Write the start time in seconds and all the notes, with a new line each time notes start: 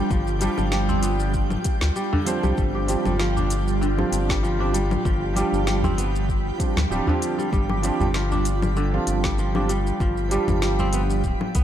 Already playing: D3 G3 D4 F4 G4 G5
0.10 G1 F3, kick, shaker
0.27 shaker
0.39 F3 G3 D4 G4, closed hi-hat, shaker
0.58 G1, low conga, shaker
0.72 G3, snare, shaker
0.89 C4, udu, shaker
1.03 B3, closed hi-hat, shaker
1.20 shaker
1.34 kick, shaker
1.50 low conga, shaker
1.64 kick, closed hi-hat, shaker
1.81 D2, snare, shaker
1.96 G3, shaker
2.13 D3, udu
2.25 F3 G3 C4 D4 C5, closed hi-hat, shaker
2.43 C2 G3, low conga, shaker
2.58 G1 G3 B5, kick, shaker
2.75 G4
2.87 F3 G3 C4 D4 G4, closed hi-hat, shaker
3.05 G1 G3, udu, low conga, shaker
3.20 F3, snare, shaker
3.36 D4, udu, shaker
3.50 closed hi-hat, shaker
3.68 shaker
3.81 D3, shaker
3.97 F3 G3 C4 D4 F4, low conga
4.12 G1, closed hi-hat, shaker
4.29 G3, kick, snare, shaker
4.43 F3, shaker
4.58 F3 G3 C4 D4 G4
4.74 G3, closed hi-hat, shaker
4.91 low conga, shaker
5.05 G1 F3, kick, shaker
5.33 F3 G3 D4, closed hi-hat, shaker
5.37 G4
5.53 G1, shaker
5.67 G3, snare, shaker
5.83 C4, udu, low conga, shaker
5.98 B3, closed hi-hat, shaker
6.16 shaker
6.29 kick, shaker
6.58 F3 G3 C4 D4 G4, kick, closed hi-hat, shaker
6.76 D2, snare, low conga, shaker
6.90 D1 F3 G3 C4 D4 G4, shaker
7.05 D3 F3 G3 C4 D4 G4, udu
7.22 closed hi-hat, shaker
7.38 G3, shaker
7.52 G1 G3, kick, shaker
7.69 G4, low conga
7.82 F3 G3 C4 D4 G4, closed hi-hat, shaker
8.00 G1 G3, udu, shaker
8.14 F3, snare, shaker
8.31 D4, udu, shaker
8.45 closed hi-hat, shaker
8.62 low conga, shaker
8.77 D3, shaker
8.92 F3 G3 C4 D4 F4
9.07 G1, closed hi-hat, shaker
9.24 G3, kick, snare, shaker
9.38 F3, shaker
9.54 F3 G3 C4 D4 G4, low conga
9.69 G3, closed hi-hat, shaker
9.87 shaker
10.00 G1 F3, kick, shaker
10.17 shaker
10.29 F3 G3 D4 G4, closed hi-hat, shaker
10.48 G1, udu, low conga, shaker
10.62 G3, snare, shaker
10.79 C4, udu, shaker
10.93 B3, closed hi-hat, shaker
11.10 shaker
11.24 D1, kick, shaker
11.41 low conga
11.55 C2 B3, kick, closed hi-hat, shaker